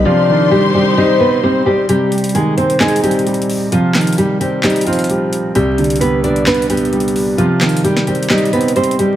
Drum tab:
HH |------------------------------------------------------------------------------------------------|x-----------x--x--x--x--x-----------x-----x-----x---x---x---x---x---x---x---x---x---o-----------|x-----------x--x--x--x--x-----------x-----------x--x--x--x--x--x--x--x--x-----------x-----------|x-----------x--x--x--x--x-----------x-----x-----x---x---x---x---x---x---x---x---x---o-----------|
CP |------------------------------------------------------------------------------------------------|------------------------------------------------x-----------------------------------------------|------------x-----------------------------------x-----------------------------------------------|------------------------------------------------x-----------------------------------------------|
SD |------------------------------------------------------------------------------------------------|------------------------------------------------o-----------------------------------------------|------------o-----------------------------------o-----------------------------------------------|------------------------------------------------o-----------------------------------------------|

HH |x-----------x---x---x---x-----------x---x---x---x---x---x---x---x---x---x---x---x---x-----------|
CP |------------x-----------------------------------x-----------------------------------------------|
SD |------------o-----------------o-----------------o-----------------------------------------------|